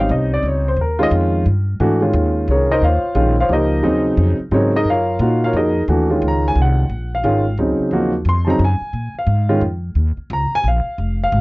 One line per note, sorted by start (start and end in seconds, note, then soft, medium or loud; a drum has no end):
0.00 0.70 G3 medium
0.00 0.70 C4 medium
0.00 0.70 C#4 medium
0.00 0.70 D#4 medium
0.00 0.11 F5 medium
0.09 0.42 C2 loud
0.09 0.32 D#5 medium
0.34 0.45 D5 medium
0.43 0.76 C#2 medium
0.48 0.67 C#5 medium
0.68 0.79 C5 medium
0.77 1.10 D#2 medium
0.81 1.01 A#4 medium
0.99 1.43 D#3 medium
0.99 1.43 G#3 medium
0.99 1.43 C#4 medium
0.99 1.43 F4 medium
1.03 1.09 D#5 loud
1.11 1.45 F2 loud
1.46 1.79 G2 medium
1.80 2.13 G#2 medium
1.80 1.99 E3 medium
1.80 2.00 A3 medium
1.80 1.99 D4 medium
1.80 2.00 F#4 medium
2.01 2.75 D#3 medium
2.01 2.74 G#3 medium
2.01 2.49 C#4 medium
2.01 2.75 F4 medium
2.13 2.47 D#2 loud
2.48 2.81 C2 medium
2.48 2.70 C#4 medium
2.48 2.71 G#4 medium
2.48 2.70 A#4 medium
2.48 2.70 C#5 medium
2.71 2.83 D#4 medium
2.71 2.83 A#4 medium
2.71 2.83 C5 medium
2.71 2.83 D#5 medium
2.82 3.02 D#2 medium
2.82 3.14 F4 medium
2.82 3.36 C5 medium
2.82 3.35 C#5 medium
2.82 3.35 F5 medium
3.04 muted upright bass stroke soft
3.15 3.48 A#1 loud
3.15 3.35 D#3 medium
3.15 3.35 G#3 medium
3.15 3.35 C#4 medium
3.15 3.35 F4 medium
3.41 3.52 F4 medium
3.41 3.51 C5 medium
3.41 3.51 C#5 medium
3.41 3.51 F5 medium
3.49 3.83 C#2 medium
3.49 3.84 F3 medium
3.49 3.84 A#3 medium
3.49 3.52 D#4 medium
3.49 3.84 G4 medium
3.49 4.03 D#5 medium
3.53 3.82 D#4 medium
3.53 4.03 A#4 medium
3.53 4.04 C5 medium
3.83 4.17 D#2 medium
3.83 4.35 C#3 medium
3.83 4.35 F#3 medium
3.83 4.35 C4 medium
3.83 4.35 D#4 medium
4.17 4.38 F2 loud
4.39 muted upright bass stroke soft
4.51 4.84 G#2 medium
4.51 4.71 C#3 medium
4.51 4.71 F#3 medium
4.51 4.71 C4 medium
4.51 4.74 C#4 medium
4.51 4.71 D#4 medium
4.51 4.74 G#4 medium
4.51 4.74 A#4 medium
4.51 4.74 C#5 medium
4.76 4.87 D#4 medium
4.76 4.87 G#4 medium
4.76 4.87 A#4 medium
4.76 4.87 D#5 loud
4.85 5.18 F#2 medium
4.90 5.19 F4 medium
4.90 5.40 A#4 medium
4.90 5.40 C#5 medium
4.90 5.40 F5 medium
5.19 5.52 A#2 loud
5.19 5.72 A#3 medium
5.19 5.56 D#4 medium
5.19 5.43 F4 medium
5.19 5.72 F#4 medium
5.44 5.55 F4 medium
5.44 5.55 A#4 medium
5.44 5.56 C#5 medium
5.44 5.55 F5 medium
5.53 5.87 F2 medium
5.53 5.82 A#4 medium
5.53 5.81 D#5 medium
5.57 5.82 D#4 medium
5.57 5.82 G#4 medium
5.88 6.21 D#2 medium
5.88 6.08 E3 medium
5.88 6.08 A3 medium
5.88 6.08 D4 medium
5.88 6.08 F#4 medium
6.10 6.83 D#3 medium
6.10 6.83 G#3 medium
6.10 6.83 C#4 medium
6.10 6.83 F4 medium
6.22 6.55 C#2 loud
6.28 6.46 A#5 medium
6.48 6.58 G#5 medium
6.55 6.89 C2 loud
6.62 7.11 F#5 medium
6.90 7.23 A#1 medium
7.15 7.57 F5 medium
7.24 7.57 G#1 medium
7.24 7.43 D#3 medium
7.24 7.44 G#3 medium
7.24 7.44 C#4 medium
7.24 7.44 F4 medium
7.58 7.78 C#2 medium
7.58 8.10 C#3 medium
7.58 8.10 F#3 medium
7.58 8.10 C4 medium
7.58 7.92 D#4 medium
7.80 muted upright bass stroke soft
7.91 8.25 D#2 medium
7.91 8.12 F3 medium
7.91 8.12 A#3 medium
7.91 8.12 D#4 medium
7.91 8.12 F#4 medium
8.25 8.59 F2 medium
8.25 8.49 C6 medium
8.45 8.59 C#3 medium
8.45 8.59 F#3 medium
8.45 8.59 C4 medium
8.45 8.59 D#4 medium
8.45 8.47 A5 medium
8.50 8.61 A#5 medium
8.60 8.80 F#2 loud
8.65 9.14 G#5 medium
8.81 muted upright bass stroke soft
8.93 9.14 A#2 medium
9.15 muted upright bass stroke soft
9.19 9.61 F5 medium
9.27 9.61 G#2 loud
9.49 9.61 D#3 medium
9.49 9.61 G#3 medium
9.49 9.61 C#4 medium
9.49 9.61 F4 medium
9.61 9.95 F2 medium
9.95 10.16 D#2 medium
10.17 muted upright bass stroke soft
10.30 10.50 C#2 loud
10.30 10.53 A#5 medium
10.51 10.66 G#5 loud
10.51 muted upright bass stroke soft
10.64 10.84 A#1 medium
10.68 11.18 F5 medium
10.86 muted upright bass stroke soft
10.98 11.31 F1 medium
11.23 11.41 F5 medium
11.32 11.41 G#1 loud